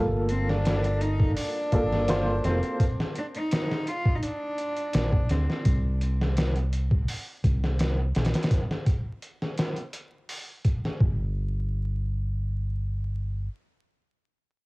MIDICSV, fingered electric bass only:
0, 0, Header, 1, 2, 480
1, 0, Start_track
1, 0, Key_signature, -2, "minor"
1, 0, Tempo, 714286
1, 1880, Time_signature, 4, 2, 24, 8
1, 9846, End_track
2, 0, Start_track
2, 0, Title_t, "Fingered electric bass"
2, 0, Program_c, 0, 33
2, 0, Note_on_c, 0, 31, 102
2, 898, Note_off_c, 0, 31, 0
2, 1162, Note_on_c, 0, 31, 92
2, 1619, Note_off_c, 0, 31, 0
2, 1642, Note_on_c, 0, 29, 100
2, 1751, Note_off_c, 0, 29, 0
2, 3323, Note_on_c, 0, 34, 83
2, 3534, Note_off_c, 0, 34, 0
2, 3561, Note_on_c, 0, 38, 95
2, 3671, Note_off_c, 0, 38, 0
2, 3802, Note_on_c, 0, 36, 110
2, 4739, Note_off_c, 0, 36, 0
2, 5001, Note_on_c, 0, 36, 93
2, 5458, Note_off_c, 0, 36, 0
2, 5483, Note_on_c, 0, 34, 98
2, 5592, Note_off_c, 0, 34, 0
2, 7397, Note_on_c, 0, 31, 99
2, 9052, Note_off_c, 0, 31, 0
2, 9846, End_track
0, 0, End_of_file